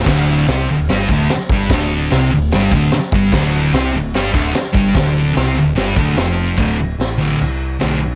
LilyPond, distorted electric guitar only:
\new Staff \with { instrumentName = "Distorted electric guitar" } { \clef bass \time 4/4 \key c \lydian \tempo 4 = 147 <d, d>4 <c c'>8 d,8 <g, g>8 <d, d>8 r8 <g, g>8 | <d, d>4 <c c'>8 d,8 <g, g>8 <d, d>8 r8 <g, g>8 | <d, d>4 <c c'>8 d,8 <g, g>8 <d, d>8 r8 <g, g>8 | <d, d>4 <c c'>8 d,8 <g, g>8 <d, d>8 <f, f>4 |
<d, a, d>8 r4 <d, a, d>8 r4 <d, a, d>8 r8 | }